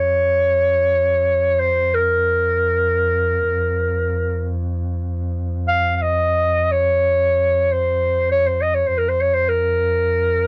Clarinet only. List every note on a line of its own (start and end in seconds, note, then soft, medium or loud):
0.00 1.61 C#5 medium
1.59 1.96 C5 medium
1.94 4.55 A#4 medium
5.68 5.96 F5 medium
5.96 6.04 F5 medium
6.02 6.73 D#5 medium
6.71 7.74 C#5 medium
7.72 8.30 C5 medium
8.31 8.48 C#5 medium
8.47 8.63 C5 medium
8.62 8.76 D#5 medium
8.74 8.89 C#5 medium
8.87 8.99 C5 medium
8.98 9.10 A#4 medium
9.09 9.23 C5 medium
9.21 9.35 C#5 medium
9.34 9.50 C5 medium
9.49 10.47 A#4 medium